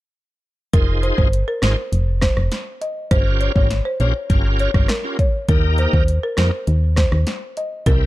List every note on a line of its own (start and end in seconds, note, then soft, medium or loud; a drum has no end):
0.73 1.12 F1 loud
0.73 1.28 D#4 medium
0.73 1.28 F4 medium
0.73 1.29 G#4 medium
0.73 0.83 A#4 loud
0.73 1.29 C5 loud
0.73 kick loud
0.73 closed hi-hat medium
1.03 1.13 C5 medium
1.03 closed hi-hat medium
1.18 1.44 G1 loud
1.18 1.28 C5 medium
1.18 kick medium
1.33 closed hi-hat medium
1.48 1.57 A#4 medium
1.62 1.75 G#1 loud
1.62 1.76 D#4 medium
1.62 1.76 F4 medium
1.62 1.76 G#4 medium
1.62 1.72 C5 medium
1.62 1.76 C5 medium
1.62 cross-stick medium
1.62 snare loud
1.62 closed hi-hat soft
1.92 2.31 F1 loud
1.92 closed hi-hat medium
2.22 2.32 C5 medium
2.22 kick medium
2.22 cross-stick loud
2.22 snare loud
2.22 closed hi-hat medium
2.37 2.50 F1 medium
2.37 cross-stick loud
2.52 snare medium
2.52 closed hi-hat medium
2.81 2.91 D#5 medium
2.81 closed hi-hat medium
3.11 3.50 G1 loud
3.11 3.52 C#4 medium
3.11 3.52 F4 medium
3.11 3.52 G4 medium
3.11 3.52 A#4 loud
3.11 3.21 C5 loud
3.11 kick loud
3.11 closed hi-hat medium
3.41 3.50 C#5 medium
3.41 closed hi-hat medium
3.56 3.81 G#1 loud
3.56 3.69 C#4 medium
3.56 3.69 F4 medium
3.56 3.69 G4 medium
3.56 3.69 A#4 medium
3.56 3.65 C#5 medium
3.56 kick loud
3.70 snare medium
3.70 closed hi-hat medium
3.85 3.95 C5 medium
4.00 4.13 A#1 loud
4.00 4.13 C#4 medium
4.00 4.14 F4 medium
4.00 4.14 G4 medium
4.00 4.14 A#4 medium
4.00 4.10 C#5 medium
4.00 closed hi-hat soft
4.30 4.68 G1 loud
4.30 4.71 C#4 medium
4.30 4.71 F4 medium
4.30 4.71 G4 medium
4.30 4.71 A#4 loud
4.30 kick medium
4.30 closed hi-hat medium
4.59 4.69 C#5 medium
4.59 closed hi-hat medium
4.74 4.87 G1 medium
4.74 4.88 C#4 medium
4.74 4.88 F4 medium
4.74 4.88 G4 medium
4.74 4.88 A#4 medium
4.74 kick loud
4.74 cross-stick loud
4.88 4.99 A#4 medium
4.88 cross-stick loud
4.88 snare loud
4.88 closed hi-hat medium
5.04 5.17 C#4 medium
5.04 5.17 F4 medium
5.04 5.17 G4 medium
5.04 5.18 A#4 medium
5.19 5.29 C#5 medium
5.19 kick medium
5.19 closed hi-hat medium
5.49 5.87 D#2 loud
5.49 6.03 A#3 medium
5.49 6.04 D#4 medium
5.49 6.04 G4 medium
5.49 5.58 A#4 medium
5.49 6.04 A#4 loud
5.49 kick loud
5.49 closed hi-hat medium
5.78 5.88 C5 medium
5.78 closed hi-hat medium
5.93 6.19 D#2 medium
5.93 6.03 C5 medium
5.93 kick loud
6.08 closed hi-hat medium
6.23 6.33 A#4 medium
6.37 6.51 F2 medium
6.37 6.51 A#3 medium
6.37 6.51 D#4 medium
6.37 6.51 G4 medium
6.37 6.51 A#4 medium
6.37 6.48 C5 medium
6.37 cross-stick medium
6.37 snare loud
6.37 closed hi-hat soft
6.67 7.06 D#2 loud
6.67 closed hi-hat medium
6.96 7.07 C5 medium
6.96 kick medium
6.96 cross-stick medium
6.96 snare loud
6.96 closed hi-hat soft
7.12 7.25 D#2 medium
7.12 cross-stick loud
7.27 snare medium
7.27 closed hi-hat medium
7.57 7.67 D#5 medium
7.57 closed hi-hat medium
7.86 8.06 C2 loud
7.86 8.06 C4 loud
7.86 8.06 E4 medium
7.86 8.06 G4 medium
7.86 8.06 A#4 loud
7.86 7.96 A#4 loud
7.86 kick loud
7.86 closed hi-hat medium